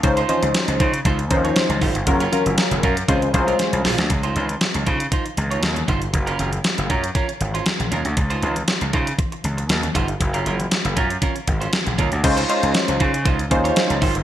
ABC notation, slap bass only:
X:1
M:4/4
L:1/16
Q:1/4=118
K:Db
V:1 name="Slap bass" clef=bass
D,,2 z D,, z D,, D,2 D,,2 E,,2 z D,, A,,, =G,,, | G,,,2 z G,,, z G,,, G,,2 D,,2 C,,2 z C,, B,,, =D,, | D,,2 D,,2 z D,, D,2 z2 D,,2 E,,2 =G,,,2 | G,,,2 G,,,2 z G,,, G,,2 z2 A,,,2 z B,,, E,, =D,, |
D,,2 D,,2 z D,, D,2 z2 D,,2 E,,2 =G,,,2 | G,,,2 G,,,2 z G,,, G,,2 z2 A,,,2 z B,,, E,, =D,, | D,,2 z D,, z D,, D,2 D,,2 E,,2 z D,, A,,, =G,,, |]